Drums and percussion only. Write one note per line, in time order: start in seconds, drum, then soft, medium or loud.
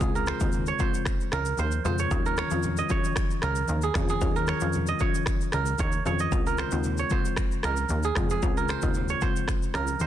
0.00 kick loud
0.00 low conga medium
0.00 shaker medium
0.16 shaker medium
0.27 finger snap medium
0.27 cross-stick medium
0.27 high conga medium
0.27 shaker medium
0.40 kick medium
0.40 shaker medium
0.52 low conga medium
0.52 shaker medium
0.66 shaker medium
0.79 kick medium
0.79 high conga medium
0.79 shaker medium
0.94 shaker medium
1.05 finger snap medium
1.05 kick medium
1.05 cross-stick medium
1.05 shaker medium
1.21 shaker soft
1.32 finger snap medium
1.32 cross-stick medium
1.32 high conga medium
1.32 shaker medium
1.45 shaker medium
1.57 high conga medium
1.57 shaker medium
1.71 shaker medium
1.85 high conga medium
1.85 low conga medium
1.85 shaker medium
1.98 shaker medium
2.11 kick loud
2.11 low conga medium
2.11 shaker medium
2.26 shaker medium
2.37 finger snap medium
2.37 cross-stick medium
2.37 high conga medium
2.37 shaker medium
2.51 shaker medium
2.63 low conga medium
2.63 shaker medium
2.77 shaker medium
2.89 kick medium
2.89 high conga medium
2.89 shaker soft
3.04 shaker medium
3.16 finger snap medium
3.16 kick medium
3.16 cross-stick medium
3.16 shaker medium
3.31 shaker soft
3.42 finger snap medium
3.42 cross-stick medium
3.42 high conga medium
3.42 shaker medium
3.55 shaker medium
3.68 high conga medium
3.68 shaker medium
3.82 shaker medium
3.94 finger snap medium
3.94 kick medium
3.94 cross-stick medium
3.94 high conga medium
3.94 low conga medium
3.94 shaker medium
4.09 shaker medium
4.21 kick loud
4.21 low conga medium
4.21 shaker medium
4.36 shaker medium
4.47 finger snap medium
4.47 cross-stick medium
4.47 high conga medium
4.47 shaker soft
4.61 shaker medium
4.73 low conga medium
4.73 shaker medium
4.87 shaker medium
4.99 kick medium
4.99 high conga medium
4.99 shaker soft
5.15 shaker medium
5.26 finger snap medium
5.26 kick medium
5.26 cross-stick medium
5.26 shaker medium
5.41 shaker soft
5.52 finger snap medium
5.52 cross-stick medium
5.52 high conga medium
5.52 shaker medium
5.66 shaker medium
5.78 kick loud
5.78 high conga medium
5.78 shaker medium
5.92 shaker medium
6.05 high conga medium
6.05 low conga medium
6.05 shaker medium
6.19 shaker medium
6.32 kick loud
6.32 low conga medium
6.32 shaker medium
6.47 shaker medium
6.58 finger snap medium
6.58 cross-stick medium
6.58 high conga soft
6.58 shaker medium
6.71 shaker medium
6.83 low conga medium
6.83 shaker medium
6.97 shaker medium
7.10 kick medium
7.10 high conga medium
7.10 shaker medium
7.25 shaker medium
7.36 finger snap medium
7.36 kick medium
7.36 cross-stick medium
7.36 shaker medium
7.52 shaker soft
7.63 finger snap medium
7.63 cross-stick medium
7.63 high conga medium
7.63 shaker medium
7.77 shaker medium
7.89 high conga medium
7.89 shaker medium
8.03 shaker medium
8.15 finger snap medium
8.15 kick loud
8.15 cross-stick medium
8.15 high conga medium
8.15 low conga medium
8.15 shaker medium
8.30 shaker medium
8.42 kick loud
8.42 low conga medium
8.42 shaker medium
8.57 shaker medium
8.68 finger snap medium
8.68 cross-stick medium
8.68 high conga medium
8.68 shaker medium
8.82 kick medium
8.82 shaker medium
8.94 low conga medium
8.94 shaker medium
9.08 shaker medium
9.21 kick medium
9.21 high conga medium
9.21 shaker medium
9.36 shaker medium
9.48 finger snap medium
9.48 kick medium
9.48 cross-stick medium
9.48 shaker medium
9.62 shaker soft
9.74 finger snap medium
9.74 cross-stick medium
9.74 high conga medium
9.74 shaker medium
9.87 shaker medium
10.00 high conga medium
10.00 shaker medium